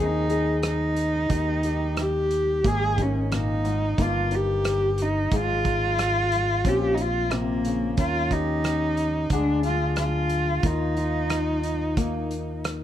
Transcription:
Already playing: D#2 D#3
0.00 C4 D#4 G#4
0.30 G#4, closed hi-hat
0.63 cross-stick, closed hi-hat
0.67 D#4
0.96 closed hi-hat
1.29 D#2 D#3 D#4 G4, kick, closed hi-hat
1.63 G4, closed hi-hat
1.97 cross-stick, closed hi-hat
2.01 G4
2.31 closed hi-hat
2.63 G#1 G#2 A#3 D#4 G#4, kick, closed hi-hat
2.98 C#4 D#4, kick, closed hi-hat
3.31 A#2, cross-stick, closed hi-hat
3.36 D#4
3.64 G#2, closed hi-hat
3.98 G1 G2 A#3 D#4, kick, closed hi-hat
4.02 F4
4.31 D#4, closed hi-hat
4.35 G4
4.65 cross-stick, closed hi-hat
4.98 closed hi-hat
5.02 D#4
5.31 G#1 G#2 G#3 D#4, kick, closed hi-hat
5.36 F4
5.65 D#4, kick, closed hi-hat
5.99 cross-stick, closed hi-hat
6.32 closed hi-hat
6.65 A#1 A#2 C4 C#4 F4 G4, kick, closed hi-hat
6.94 D#4, closed hi-hat
7.01 F4
7.31 C3 A#3, cross-stick, closed hi-hat
7.65 C#3, closed hi-hat
7.97 D#2 D#3 C#4 F4, kick, closed hi-hat
8.31 D#4 G4, kick, closed hi-hat
8.64 cross-stick, closed hi-hat
8.97 closed hi-hat
9.30 D2 D3 G#3 D4 G#4, kick, closed hi-hat
9.63 D4 F4, closed hi-hat
9.96 F4, cross-stick, closed hi-hat
10.29 closed hi-hat
10.60 D#2 F4, kick, closed hi-hat
10.64 D#3 D#4 F4
10.97 F4, closed hi-hat
11.30 cross-stick, closed hi-hat
11.63 closed hi-hat
11.97 A#3, kick, closed hi-hat
12.31 closed hi-hat
12.64 cross-stick, closed hi-hat

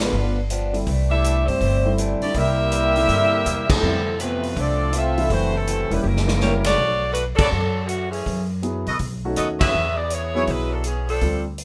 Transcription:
Already playing: A1
0.02 D3 F3 G3 B3 D4 F4 B4
0.13 G1 G2 F3 B3
0.17 D4
0.50 G2 F3 B3 D4, closed hi-hat
0.73 D3 G3 C4 E4, open hi-hat
0.87 C2 C3 E3 A3 D4, kick, open hi-hat
1.09 G3 A3 D4 E4 G4 A4 E5
1.24 C3 E3 A3 D4, closed hi-hat
1.46 G2 G3 A3 C4 E4 G4 C5, open hi-hat
1.61 G1 C3 E3 A3, kick, open hi-hat
1.65 D4
1.85 D3 G3 C4 E4
1.98 C3 E3 A3 D4, closed hi-hat
2.21 G3 A3 D4 E4 G4 D5, muted upright bass stroke, open hi-hat
2.33 C2 C3 G3 A#3 C4 E4, kick, open hi-hat
2.37 E4 G4 A#4 E5
2.71 C3 G3 A#3 E4, closed hi-hat
2.95 D3 G3 C4 E4, open hi-hat
3.08 G2 C3 G3 A#3 E4, kick, open hi-hat
3.45 E2 C3 G3 A#3 E4, closed hi-hat
3.68 C3 F3 A3 C4 E4 A4, kick, crash
3.81 F2 D3 E3 G3 A3 C4 E4
4.19 F2 C3 E3 F3 A3 B3 C4 E4 F4 B4, closed hi-hat
4.43 open hi-hat
4.55 C2 F2 E3 F3 A3 C4 D4 F4, kick, open hi-hat
4.60 C4 A4 D5
4.93 F2 E3 A3 C4 F4 A4, closed hi-hat
4.97 E5
5.17 E3 A3 D4 E4, open hi-hat
5.30 F#1 F#2 E3 A3 C4 E4 F#4 C5, kick, open hi-hat
5.53 C3 E3 F#3 A3 C4 E4 A4
5.67 F#2 E3 A3 C4, closed hi-hat
5.90 E1 G3 A#3 B3 C4 C#4 E4 B4, open hi-hat
6.01 F#1 C#3 E3 F#3 A#3 G4
6.06 G3 A#3 C#4 E4 G4 A#4
6.16 snare
6.28 snare
6.40 F#3 G3 A#3 C#4 E4 G4 C#5, snare
6.64 A3 F#4 C#5 D5, snare, ride
6.78 B1
7.12 A3 D4 F#4 B4, closed hi-hat
7.35 A1 F#3 C#4 D4 A4, kick, crash
7.39 A4 B4 C#5 D5
7.52 F#2
7.85 D3 A3 C#4 F#4, closed hi-hat
8.10 E3 A3 C#4 G#4, open hi-hat
8.26 F#2, kick, open hi-hat
8.62 F#3 B3 E4 G#4, closed hi-hat
8.86 A#1 F#4 A4 B4 D#5, open hi-hat
8.99 B1, kick, open hi-hat
9.25 A3 C#4 D#4 F#4
9.36 D#2 B3 F#4 A4 D#5, closed hi-hat
9.59 C#4 G#4 B4 E5, kick, crash
9.74 E2
9.97 B3 E4 G#4 D5
10.10 B3 E4 G#4 C#5, closed hi-hat
10.35 F#3 B3 E4 G#4 B4 C#5
10.47 B1 G#3 C#4 E4 B4, kick, open hi-hat
10.72 F#3 B3 D4 A4
10.84 E3 B3 C#4 G#4, closed hi-hat
11.09 F3 C4 D4 A4, open hi-hat
11.21 D2 G3 C4 F4 A4, kick, open hi-hat
11.58 closed hi-hat

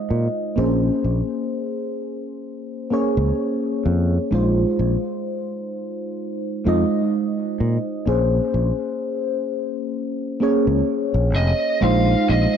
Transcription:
Already playing: G#3 D#4 F4 D#5
0.10 A#2
0.56 A#1 A#3 C#4 G#4 C5
1.04 A#1
2.90 A#3 C#4 G#4 C#5
3.17 C#2
3.86 F2
4.31 A#1 G#3 D#4 F4 C5
4.79 A#1
6.65 F2 G#3 D#4 F4 D#5
7.60 A#2
8.06 A#1 A#3 C#4 G#4 C5
8.54 A#1
10.40 A#3 C#4 G#4 C#5
10.67 C#2
11.14 A#1
11.35 F1 D#5
11.81 A#1 G#3 D#4 F4 C5 F5
12.29 A#1 D#5

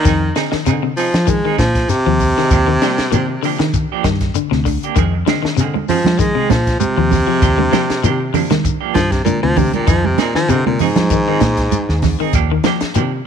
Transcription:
Already playing: D#3
0.05 F2 D#3 C4 D#4 G#4, kick, snare, closed hi-hat, shekere
0.23 muted clean electric guitar stroke
0.36 D3 C4 D#4 G#4, snare, closed hi-hat, shekere
0.52 D#3, muted fingered electric bass stroke, muted clean electric guitar stroke, snare
0.66 C3 D3 C4 D#4 G#4, closed hi-hat, shekere
0.83 C3, muted clean electric guitar stroke
0.97 F3 C4 D#4 G#4, open hi-hat, shekere
1.14 F3, muted clean electric guitar stroke, snare, closed hi-hat
1.27 D#3 G#3, muted clean electric guitar stroke, kick, closed hi-hat, shekere
1.45 D#3 C4 D#4 G#4
1.58 A#2 F3, kick, snare, closed hi-hat, shekere
1.75 kick, snare, closed hi-hat
1.89 C3, snare, closed hi-hat, shekere
2.06 D#2 F3, muted clean electric guitar stroke
2.20 muted clean electric guitar stroke, kick, open hi-hat, shekere
2.37 D#3 D#4 G#4, snare
2.51 D#2 F3 A#3 D4 G4, kick, closed hi-hat, shekere
2.67 D#3, muted clean electric guitar stroke
2.82 F3 G3 A#3 D4 G4, snare, closed hi-hat, shekere
2.98 muted fingered electric bass stroke, muted clean electric guitar stroke, snare, closed hi-hat
3.12 C3 D#3 F3 A#3 D4 G4, closed hi-hat, shekere
3.30 muted clean electric guitar stroke
3.43 D3 F3 A#3 D4 G4, open hi-hat, shekere
3.59 D#3, muted clean electric guitar stroke, snare, closed hi-hat
3.74 muted clean electric guitar stroke, kick, closed hi-hat, shekere
3.92 F3 A#3 D4 G4
4.04 G2 D#3, muted clean electric guitar stroke, kick, snare, closed hi-hat, shekere
4.21 kick, snare, closed hi-hat
4.35 D3, closed hi-hat, shekere
4.51 D2 C3, muted clean electric guitar stroke, snare
4.65 D3, muted clean electric guitar stroke, kick, open hi-hat, shekere
4.83 A#3 D4 G4, closed hi-hat
4.96 F2 D#3 G#3 C4 G#4, kick, closed hi-hat, shekere
5.15 muted clean electric guitar stroke
5.26 D3 D#3 G#3 C4, muted clean electric guitar stroke, snare, closed hi-hat, high conga, shekere
5.43 D#3, muted fingered electric bass stroke, muted clean electric guitar stroke, snare
5.57 C3 D3 D#3 G#3, closed hi-hat, shekere
5.61 C4 G#4
5.75 muted clean electric guitar stroke, high conga
5.88 D#3 F3 G#3 C4 G#4, open hi-hat, low conga, shekere
6.04 F3, snare, closed hi-hat, high conga
6.19 D#3 G#3, muted clean electric guitar stroke, kick, snare, closed hi-hat, shekere
6.35 C3 D#3 G#3 C4 G#4
6.50 A#2 F3, muted clean electric guitar stroke, kick, snare, closed hi-hat, high conga, shekere
6.67 kick, snare, closed hi-hat
6.80 C3, closed hi-hat, high conga, shekere
6.97 D#2 F3, muted clean electric guitar stroke
7.11 muted clean electric guitar stroke, kick, snare, open hi-hat, low conga, shekere
7.27 F3 G#3 C4 G#4
7.42 D#2 F3 A#3 D4 G4, kick, closed hi-hat, shekere
7.58 D3, muted clean electric guitar stroke, high conga
7.72 F3 A#3 D4 G4, snare, closed hi-hat, high conga, shekere
7.90 muted fingered electric bass stroke, muted clean electric guitar stroke, snare, closed hi-hat
8.03 C3 D#3 F3 A#3 D4 G4, closed hi-hat, shekere
8.20 muted clean electric guitar stroke
8.34 D3 F3 A#3 D4, muted clean electric guitar stroke, open hi-hat, low conga, shekere
8.50 D#3, muted clean electric guitar stroke, snare, closed hi-hat, high conga
8.64 muted clean electric guitar stroke, kick, closed hi-hat, shekere
8.80 F3 A#3 D4 G4
8.94 G2 D#3 F3, muted clean electric guitar stroke, kick, snare, closed hi-hat, high conga, shekere
9.11 C3, kick, snare, closed hi-hat
9.24 A#2 D3, closed hi-hat, high conga, shekere
9.43 D2 C3 F3, muted clean electric guitar stroke
9.56 C3 D3, muted clean electric guitar stroke, kick, open hi-hat, low conga, shekere
9.73 A#2 A#3 D4 G4, closed hi-hat, high conga
9.87 F2 D#3 F3 D#4 G#4, muted clean electric guitar stroke, kick, snare, closed hi-hat, shekere
10.04 C3, high conga
10.18 A#2 C4 D#4 G#4, snare, closed hi-hat, high conga, shekere
10.34 D#3 F3, muted fingered electric bass stroke, snare
10.49 C3 D3 F3 C4 D#4 G#4, closed hi-hat, shekere
10.66 A#2 C3, muted clean electric guitar stroke, high conga
10.79 G#2 F3 C4 D#4 G#4, open hi-hat, low conga, shekere
10.96 F3, muted clean electric guitar stroke, snare, closed hi-hat, high conga
11.10 D#3, muted clean electric guitar stroke, kick, closed hi-hat, shekere
11.28 D#3 F3 C4 D#4 G#4
11.41 A#2, muted clean electric guitar stroke, kick, snare, closed hi-hat, high conga, shekere
11.57 kick, snare, closed hi-hat
11.72 closed hi-hat, high conga, shekere
11.89 D#2, muted clean electric guitar stroke, snare
12.02 muted clean electric guitar stroke, kick, snare, open hi-hat, low conga, shekere
12.20 D#3 C4 D#4 G#4
12.33 D#2 F3 A#3 D4 G4, kick, closed hi-hat, shekere
12.52 D#3, muted clean electric guitar stroke
12.64 F3 A#3 D4 G4, snare, closed hi-hat, high conga, shekere
12.81 muted fingered electric bass stroke, muted clean electric guitar stroke, snare, closed hi-hat
12.94 C3 D#3 F3 A#3 D4 G4, closed hi-hat, shekere
13.12 muted clean electric guitar stroke

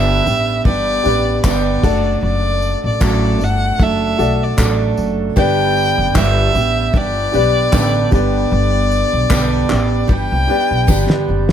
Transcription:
Already playing: G1 G2 D3 G3 B3 D4 G4 B4 D5 E5
0.25 A1 G3 B3 D4 G4, tambourine
0.65 G1 G3 B3 D4 G4 D5, kick
1.04 A1 B3 D4 G4 B4 D5, tambourine
1.08 G3
1.44 G1 G2 D3 G3 B3 D4 G4 D5, kick, clap, tambourine
1.83 F#1 F#3 A3 D4 F#4 A4 D5, kick, tambourine, crash
2.23 F#1 D5
2.62 tambourine
2.84 A1 D5
3.00 A1 F#3 A3 D4 A4, kick, clap, tambourine
3.39 G1 A3 D4 A4, tambourine
3.44 F#5
3.78 F#1 F#3 A3 D4 A4, kick
3.83 E5
4.17 B1 A3 D4 F#4 A4 D5, tambourine
4.43 D5
4.57 A1 F#3 A3 D4 A4, kick, clap, tambourine
4.97 F#1, tambourine
5.36 G1 G2 D3 G3 B3 D4 G4 B4 D5 G5, kick
5.77 tambourine
5.98 F#1
6.14 G1 G2 D3 G3 B3 D4 G4 E5, kick, clap, tambourine
6.53 A1 G3 B3 D4 G4, tambourine
6.93 G1 G3 B3 D4 G4 D5, kick
7.32 B1 G3 B3 D4 G4 B4 D5, tambourine
7.72 A1 G2 D3 G3 B3 D4 G4, kick, clap, tambourine
8.11 G1 G2 D3 G3 B3 D4 G4 B4 D5, kick, tambourine
8.52 G1
8.91 tambourine
9.13 B1
9.30 B1 G2 D3 G3 B3 D4 G4, kick, clap, tambourine
9.69 A1 G3 B3 D4 G4, clap, tambourine
10.08 G1 G3 B3 D4 G4, kick
10.13 G5
10.32 C2
10.48 G3 B3 D4 G4 B4 D5
10.71 B1
10.87 G1 D3 G3 B3 D4 G4, kick, tambourine
11.10 snare
11.28 F#1
11.49 snare

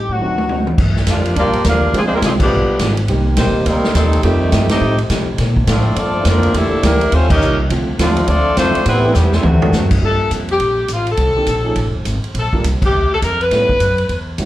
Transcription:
Already playing: A2 G3 C4 D#4 G4
0.09 A2 C3 F#3 F#4
0.20 D2 D3 D#3 F#3 C4 D4 D#4 F#4
0.38 high tom
0.49 D3 F#3 C4 D#4, high tom
0.67 mid tom
0.78 G2 F3 A#3 D4, kick, crash
0.96 snare
1.06 F2 G2 A#2 D3 F3 G3 A#3 D4 F4, kick, snare, hi-hat pedal, ride
1.25 ride
1.35 D2 G2 F3 G3 A#3 D4 F4 G4, kick, ride
1.39 G4 D5
1.45 A#1
1.53 G1, ride
1.64 D#2 G2 D3 F3 A#3 D4, kick, snare, hi-hat pedal, ride
1.68 G3 D4 F4 A#4
1.93 D2 C3 D3 F3 G#3 C4 D4 F4 G#4, kick, ride
1.97 F3 C4 D4 G#4
2.04 F3 G#3 C4 D4 F4 C5
2.13 G3 A#3 C4 E4 A#4
2.22 C2 C3 D3 F3 G#3 C4 D4 F4 G#4, kick, snare, hi-hat pedal, ride
2.40 B2 D3 F3 G3 B3 D4 G4, kick, crash
2.51 G1 G3 B3 F4 G#4
2.68 muted upright bass stroke
2.79 G#1 G3 B3 F4 G#4, kick, snare, hi-hat pedal, ride
2.97 ride
3.07 C2 C3 D#3 G3 A#3 C4 D#4 G4, kick, ride
3.36 A#1 C3 D#3 G3 A#3 C4 D#4 G4 C5, kick, snare, hi-hat pedal, ride
3.46 G1
3.56 D#1
3.64 D2 C3 D#3 G3 A#3 C4 D#4 A#4, kick, ride
3.84 snare
3.92 D#2 A#2 C3 D#3 G3 A3 A#3 C4 D#4 A4, kick, snare, hi-hat pedal, ride
3.96 D#4
4.13 ride
4.20 F2 C3 D#3 F3 G3 A3 C4 G4, kick, ride
4.24 D#3 G3 A3 C4 D#4 F4 G4
4.52 G2 F3 A3 D#4 G4, kick, snare, hi-hat pedal, ride
4.69 A3 C4 D#4 G4 A4 D#5, snare, ride
4.81 A2 F3 A3 D#4 G4
4.98 ride
5.10 C3 F3 A3 D#4 G4, kick, snare, hi-hat pedal, ride
5.38 A#2 A#3 D4 A4 C5, kick, snare, ride
5.56 kick
5.67 A2 D3 F3 A3 A#3 C4 D4 F4 A4 C5, kick, snare, hi-hat pedal, ride
5.96 G2 F3 A3 A#3 C4 D4 F4 A4 C5 D5, kick, ride
6.24 F2 D3 F3 A#3 C4 D4 A4 A#4 C5, kick, snare, hi-hat pedal, ride
6.43 ride
6.54 E2 A#2 D3 E3 G3 A3 A#3 D4 E4 G4 A4, kick, ride
6.72 muted upright bass stroke
6.83 D2 D3 E3 G3 A#3 D4 E4 G4 A#4, kick, snare, hi-hat pedal, ride
7.01 ride
7.12 D#2 D#3 G3 A3 C4 C#4 F4 C5, kick, ride
7.30 G3 A#3 C#4 D#4 G4 A#4 D#5, kick, crash
7.41 C2 D#3 G3 C#4 F4, hi-hat pedal
7.70 D2 D3 F3 A3 C4 F4, kick, ride
7.99 D#2 A2 C3 D3 F3 A3 C4 D4 F4, kick, snare, hi-hat pedal, ride
8.17 ride
8.28 D2 D3 F3 A3 C4 D4 F4 A4 D5, kick, ride
8.56 F2 D3 F3 A3 C4 D4 F4 C5, kick, snare, hi-hat pedal, ride
8.75 muted upright bass stroke, ride
8.84 A2 E3 G3 A3 B3 C4 E4, kick, ride
8.88 G4 B4
9.04 E3 A3 B3 C4 G4
9.14 E2 C3 E3 G3 A3 B3 C4 G4 B4, snare, hi-hat pedal
9.32 C3 E3 G3 A3 C4 E4 A4, snare
9.43 D2 A2 C3 D3 F#3 A3 C4 F#4, mid tom
9.48 F#4
9.62 F#3 A3 C4 D4 A4, floor tom
9.72 F#2 D3 A3 C4 F#4, snare, hi-hat pedal
9.91 kick, crash
10.02 G2 G3 A#3 D4 F4 A4, kick
10.31 F2, kick, hi-hat pedal, ride
10.49 G4, ride
10.60 A#1, kick, ride
10.88 A1, kick, hi-hat pedal, ride
10.94 F4
11.07 ride
11.11 A4
11.17 C2, kick, ride
11.35 D#3 A#3 C4 D4 G4, muted upright bass stroke
11.47 A#1, kick, hi-hat pedal, ride
11.65 F3 A3 C#4 D#4 G#4
11.76 A1, kick, ride
11.86 F1
11.95 D#1
12.05 G#1, kick, hi-hat pedal, ride
12.23 muted upright bass stroke, ride
12.34 A#1, kick, ride
12.39 A4
12.53 G3 A#3 D4 F4 A#4, muted upright bass stroke, kick
12.64 C2, kick, hi-hat pedal, ride
12.82 G4, kick, crash
12.93 D2
13.14 A4
13.22 F2 A#4, kick, hi-hat pedal, ride
13.41 B4, ride
13.51 A2 G3 B3 C#4 E4 A4, kick, snare, ride
13.69 muted upright bass stroke, kick
13.80 F#2, kick, hi-hat pedal, ride
13.98 ride
14.09 E2, kick, ride
14.38 C#2 G3 B3 C#4 E4 F#4, kick, hi-hat pedal, ride

